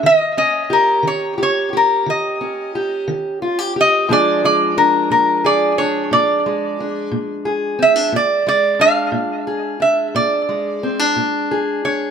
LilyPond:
<<
  \new Staff \with { instrumentName = "Resonator guitar played with a steel bar" } { \time 12/8 \key bes \mixolydian \tempo 4. = 59 ees''8 ees''8 bes'8 des''8 des''8 bes'8 ees''4. r4 ees''8 | d''8 d''8 bes'8 bes'8 d''8 des''8 d''4. r4 e''8 | d''8 d''8 f''4. e''8 d''2 r8 des''8 | }
  \new Staff \with { instrumentName = "Steel-string acoustic guitar" } { \time 12/8 \key bes \mixolydian << { r8 des'8 g'4 g'8 g'4 des'8 g'4 f'16 g'16 g'8 | <f aes d' aes'>8 aes8 d'4 aes'8 d'4 aes8 d'4 aes'8 c'16 d'16 | r8 aes8 d'4 aes'8 d'4 aes8 c'16 d'8. aes'8 d'8 | } \\ { ees4 r8 ees4 r8 ees4 r8 ees4 r8 | bes,4 r8 bes,4 r8 bes,4 r8 bes,4 r8 | bes,4 r8 bes,4 r8 bes,4 r8 bes,4 r8 | } >> }
>>